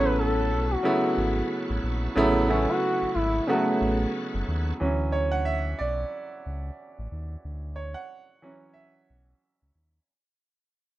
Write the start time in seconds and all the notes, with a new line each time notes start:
Already playing: A1 C#3 F#3 A3 B3 C#4 E4 F#4 B4 C#5 A5
0.05 B4
0.19 A4
0.51 B1
0.71 F#4
0.83 C#3 F#3 A3 B3 E4
1.17 G#1
1.70 A1
1.83 A#1
2.15 A1 C#3 F#3 A3 B3 E4
2.48 C#3 F#3 A3 B3 C#4 E4
2.69 F#4
3.02 G#1
3.14 G#1 E4
3.47 C#3 F#3 A3 B3 F#4
3.81 A1
4.34 F#1
4.48 D#2
4.80 D2 E3 F#3 C#4
5.12 C#5
5.32 F#5
5.45 E5
5.79 B1 D5
6.46 C#2
6.99 A1
7.12 D#2
7.45 D2
7.76 C#5
7.94 F#5
8.42 E3 F#3 C#4
8.74 E5
9.10 B1
9.62 C#2
9.75 D#2